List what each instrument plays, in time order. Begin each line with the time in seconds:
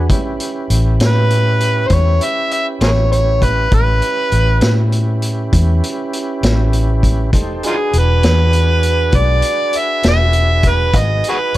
0.09 fingered electric bass A1, tonewheel organ C#4 E4 G4 B4, kick, closed hi-hat
0.40 closed hi-hat
0.70 fingered electric bass A1, closed hi-hat
1.00 fingered electric bass A2, snare, closed hi-hat
1.05 harmonica B4
1.30 closed hi-hat
1.60 closed hi-hat
1.87 fingered electric bass E2, harmonica C5, kick, closed hi-hat
1.94 harmonica C#5
2.21 harmonica E5, closed hi-hat
2.51 harmonica E5, closed hi-hat
2.81 fingered electric bass A1, harmonica G#4 A#4 C#5, snare, closed hi-hat
3.12 harmonica C#5, closed hi-hat
3.42 harmonica B4, kick, closed hi-hat
3.72 fingered electric bass A1, tonewheel organ C#4 E4 G4 B4, harmonica B4, kick, closed hi-hat
4.02 closed hi-hat
4.32 fingered electric bass A1, closed hi-hat
4.61 fingered electric bass A2, snare, closed hi-hat
4.92 closed hi-hat
5.22 closed hi-hat
5.53 fingered electric bass E2, kick, closed hi-hat
5.84 closed hi-hat
6.13 closed hi-hat
6.43 fingered electric bass A1, snare, closed hi-hat
6.73 closed hi-hat
7.03 kick, closed hi-hat
7.33 fingered electric bass E1, tonewheel organ D#4 G4 A4 C5, kick, closed hi-hat
7.63 tonewheel organ D4 F#4 G#4 B4, harmonica D#4 F4 G#4, closed hi-hat
7.93 fingered electric bass E1, closed hi-hat
7.97 harmonica B4
8.23 fingered electric bass E2, snare, closed hi-hat
8.53 closed hi-hat
8.83 closed hi-hat
9.12 fingered electric bass B1, kick, closed hi-hat
9.16 harmonica D5
9.42 closed hi-hat
9.73 closed hi-hat
9.77 harmonica E5
10.03 fingered electric bass E1, snare, closed hi-hat
10.08 harmonica E5
10.33 closed hi-hat
10.63 kick, closed hi-hat
10.69 harmonica B4
10.93 fingered electric bass G#1, tonewheel organ D#4 F#4 G#4 B4, kick, closed hi-hat
10.98 harmonica D#5
11.24 closed hi-hat
11.29 harmonica F#4 G#4 B4
11.54 closed hi-hat